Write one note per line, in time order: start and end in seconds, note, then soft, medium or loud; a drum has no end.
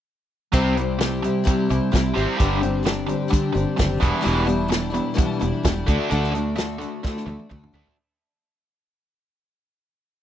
0.53 1.27 C2 medium
0.53 0.76 C3 medium
0.53 0.74 C3 medium
0.53 0.74 G3 medium
0.53 0.76 G3 medium
0.53 0.76 C4 medium
0.53 0.75 C4 loud
0.53 0.76 E4 medium
0.53 0.77 G4 medium
0.53 kick loud
0.53 closed hi-hat medium
0.77 0.97 C3 soft
0.77 0.97 G3 medium
0.77 1.01 E4 soft
0.77 1.01 G4 medium
0.77 closed hi-hat medium
0.81 1.02 C4 soft
0.99 1.20 C3 medium
0.99 1.20 G3 medium
0.99 1.23 G3 medium
0.99 1.24 C4 medium
0.99 1.24 E4 medium
0.99 snare loud
0.99 closed hi-hat medium
1.03 1.24 G4 medium
1.22 1.43 C3 medium
1.22 1.44 G3 medium
1.22 1.44 E4 soft
1.22 1.44 G4 medium
1.22 closed hi-hat medium
1.27 1.43 C4 soft
1.44 1.68 C3 medium
1.44 1.67 C3 medium
1.44 1.68 G3 medium
1.44 1.67 G3 medium
1.44 1.68 C4 medium
1.44 1.68 E4 medium
1.44 1.68 G4 medium
1.44 kick loud
1.44 closed hi-hat medium
1.69 1.79 C2 medium
1.69 1.91 C3 medium
1.69 1.90 G3 medium
1.69 1.91 C4 soft
1.69 1.92 E4 medium
1.69 1.92 G4 medium
1.69 closed hi-hat medium
1.91 2.11 C2 medium
1.91 2.13 C3 medium
1.91 2.15 G3 medium
1.91 2.13 G3 medium
1.91 2.15 C4 medium
1.91 2.15 E4 medium
1.91 2.14 G4 medium
1.91 kick medium
1.91 snare loud
1.91 closed hi-hat medium
2.14 2.25 G#1 medium
2.14 2.37 C3 medium
2.14 2.37 G3 medium
2.14 2.38 C4 medium
2.14 2.39 C4 soft
2.14 2.39 E4 medium
2.14 2.39 G4 soft
2.14 closed hi-hat medium
2.37 2.60 G2 medium
2.37 2.62 G2 medium
2.37 2.60 D3 medium
2.37 2.62 D3 medium
2.37 2.60 G3 medium
2.37 2.62 G3 medium
2.37 2.62 C4 medium
2.37 2.62 D4 medium
2.37 2.61 G4 loud
2.37 kick loud
2.37 closed hi-hat medium
2.41 3.13 G1 loud
2.61 2.83 G2 medium
2.61 2.83 D3 medium
2.61 2.81 G3 soft
2.61 2.83 C4 medium
2.61 2.83 D4 soft
2.61 2.83 G4 medium
2.61 closed hi-hat medium
2.83 3.05 G2 medium
2.83 3.06 D3 medium
2.83 3.07 G3 medium
2.83 3.07 C4 medium
2.83 3.07 D4 medium
2.83 3.06 G4 medium
2.83 snare loud
2.83 closed hi-hat medium
3.07 3.28 G2 medium
3.07 3.28 D3 medium
3.07 3.28 G3 soft
3.07 3.29 C4 soft
3.07 3.29 D4 soft
3.07 3.30 G4 soft
3.07 closed hi-hat medium
3.28 3.53 G2 medium
3.28 3.52 G2 medium
3.28 3.53 D3 medium
3.28 3.51 D3 medium
3.28 3.54 G3 medium
3.28 3.54 C4 medium
3.28 3.53 D4 medium
3.28 3.53 G4 medium
3.33 kick medium
3.33 closed hi-hat medium
3.53 3.64 G1 medium
3.53 3.75 G2 medium
3.53 3.75 D3 medium
3.53 3.75 G3 soft
3.53 3.77 C4 soft
3.53 3.77 D4 medium
3.53 3.76 G4 soft
3.53 closed hi-hat medium
3.77 3.98 F#1 medium
3.77 3.98 G2 medium
3.77 3.99 D3 medium
3.77 4.01 G3 medium
3.77 4.01 C4 medium
3.77 4.00 D4 medium
3.77 4.00 G4 medium
3.77 kick medium
3.77 snare medium
3.77 closed hi-hat medium
4.00 4.11 E1 medium
4.00 4.23 E2 medium
4.00 4.23 B2 medium
4.00 4.23 E3 medium
4.00 4.21 E3 soft
4.00 4.21 G3 medium
4.00 4.22 D4 medium
4.00 4.22 E4 medium
4.00 kick loud
4.00 closed hi-hat medium
4.21 4.46 E2 medium
4.21 4.46 B2 medium
4.21 4.46 E3 medium
4.21 4.46 G3 medium
4.21 4.46 D4 medium
4.21 4.44 E4 medium
4.25 4.99 E1 loud
4.25 4.46 B2 medium
4.25 4.47 E3 medium
4.25 closed hi-hat medium
4.46 4.68 E2 medium
4.46 4.69 B2 medium
4.46 4.67 E3 soft
4.46 4.67 G3 medium
4.46 4.69 D4 medium
4.46 4.69 E4 medium
4.46 closed hi-hat medium
4.68 4.91 E2 medium
4.68 4.91 B2 medium
4.68 4.91 E3 medium
4.68 4.90 G3 medium
4.68 4.90 D4 medium
4.68 4.89 E4 medium
4.68 snare loud
4.68 closed hi-hat medium
4.90 5.14 E3 soft
4.90 5.14 G3 soft
4.90 5.14 D4 medium
4.90 5.15 E4 medium
4.94 5.15 E2 medium
4.94 5.15 B2 medium
4.94 closed hi-hat medium
5.14 5.39 E2 medium
5.14 5.38 E2 medium
5.14 5.39 B2 medium
5.14 5.38 B2 medium
5.14 5.40 E3 medium
5.14 5.40 G3 medium
5.14 5.39 D4 medium
5.14 5.38 E4 medium
5.18 kick loud
5.18 closed hi-hat medium
5.39 5.51 E1 medium
5.39 5.62 E2 medium
5.39 5.62 B2 medium
5.39 5.62 E3 soft
5.39 5.63 G3 medium
5.39 5.64 D4 medium
5.39 5.63 E4 medium
5.39 closed hi-hat medium
5.63 5.83 E1 medium
5.63 5.85 E2 medium
5.63 5.86 B2 medium
5.63 5.87 E3 medium
5.63 5.87 G3 medium
5.63 5.88 D4 medium
5.63 5.87 E4 medium
5.63 kick medium
5.63 snare loud
5.63 closed hi-hat medium
5.86 5.97 D2 medium
5.86 6.08 D3 medium
5.86 6.09 A3 medium
5.86 6.10 A3 medium
5.86 6.09 D4 medium
5.86 6.10 D4 soft
5.86 6.11 F#4 medium
5.86 kick loud
5.86 closed hi-hat medium
6.09 6.85 D2 medium
6.09 6.31 D3 medium
6.09 6.34 D3 medium
6.09 6.31 A3 medium
6.09 6.34 A3 medium
6.09 6.32 D4 loud
6.09 6.33 D4 medium
6.09 6.32 F#4 medium
6.09 closed hi-hat medium
6.23 snare soft
6.32 6.54 D3 medium
6.32 6.54 A3 medium
6.32 6.55 A3 medium
6.32 6.56 D4 soft
6.32 6.56 F#4 medium
6.32 closed hi-hat medium
6.56 6.77 D3 medium
6.56 6.80 D3 medium
6.56 6.77 A3 medium
6.56 6.80 A3 medium
6.56 6.80 D4 medium
6.56 6.79 F#4 medium
6.56 snare loud
6.56 closed hi-hat medium
6.79 7.00 D3 medium
6.79 7.00 A3 medium
6.79 7.03 A3 soft
6.79 7.03 D4 soft
6.79 7.03 F#4 medium
6.79 closed hi-hat medium
7.04 7.25 D3 medium
7.04 7.27 D3 medium
7.04 7.25 A3 medium
7.04 7.27 A3 medium
7.04 7.27 D4 medium
7.04 7.26 F#4 medium
7.04 kick loud
7.04 snare medium
7.17 snare soft
7.26 7.36 D2 medium
7.26 7.47 D3 medium
7.26 7.48 A3 medium
7.26 7.50 A3 soft
7.26 7.50 D4 medium
7.26 7.50 F#4 medium
7.26 high tom medium
7.39 high tom medium
7.50 7.69 D2 medium
7.50 7.71 D3 medium
7.50 7.73 D3 medium
7.50 7.71 A3 medium
7.50 7.74 A3 medium
7.50 7.73 D4 medium
7.50 7.72 F#4 medium
7.50 kick medium
7.50 mid tom medium
7.64 mid tom medium
7.73 7.83 D2 medium
7.73 7.95 D3 medium
7.73 7.96 A3 medium
7.73 7.98 A3 soft
7.73 7.97 D4 medium
7.73 7.96 D4 medium
7.73 7.96 F#4 medium
7.73 floor tom medium
7.87 floor tom medium